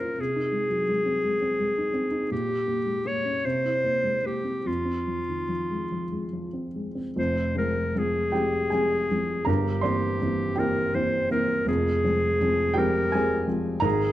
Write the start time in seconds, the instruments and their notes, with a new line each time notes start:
Already playing: grand piano A#2 G#3 A#3 C#4, clarinet A#4
0.00 grand piano F4
0.18 grand piano C3, clarinet G#4
0.36 grand piano D#4
0.52 grand piano G#3
0.70 grand piano F#3
0.89 grand piano G#3
1.06 grand piano C4
1.25 grand piano G#3
1.42 grand piano C4
1.60 grand piano G#3
1.78 grand piano D#4
1.94 grand piano C4
2.11 grand piano D#4
2.31 grand piano A#2, clarinet G4
2.49 grand piano G4
2.67 grand piano A#3
2.86 grand piano G#3
3.05 grand piano A#3, clarinet C#5
3.25 grand piano C#4
3.45 grand piano C3, clarinet C5
3.65 grand piano E4
3.84 grand piano A#3
4.04 grand piano G#3
4.24 grand piano A#3, clarinet G4
4.44 grand piano C4
4.65 grand piano F2, clarinet F4
4.85 grand piano C4
5.07 grand piano F3
5.29 grand piano D#3
5.49 grand piano F3
5.70 grand piano G#3
5.92 grand piano F3
6.12 grand piano G#3
6.33 grand piano F3
6.53 grand piano C4
6.76 grand piano G#3
6.95 grand piano C4
7.16 grand piano F1 F2, clarinet C5
7.55 grand piano F3 G#3 C4, clarinet A#4
7.95 grand piano F3 G#3 C4, clarinet G#4
8.32 grand piano F3 G#3 C4 G4 G5
8.70 grand piano F3 G#3 C4 G#4 G#5
9.11 grand piano F3 G#3 C4
9.45 grand piano G1 G2 A#4 A#5, clarinet G4
9.81 grand piano E3 A#3 C4 C5 C6
10.22 grand piano E3 A#3 C4
10.56 grand piano E3 A#3 C4 G4 G5, clarinet A#4
10.95 grand piano E3 A#3 C4, clarinet C5
11.31 grand piano E3 A#3 C4, clarinet A#4
11.65 grand piano F1 F2, clarinet G#4
12.04 grand piano F3 G#3 C4
12.41 grand piano F3 G#3 C4
12.74 grand piano F3 G#3 C4 G4 G5
12.78 clarinet A#4
13.12 grand piano F3 G#3 C4 G#4 G#5
13.47 grand piano F3 G#3 C4
13.80 grand piano G#1 G#2 A#4 A#5
13.84 clarinet G#4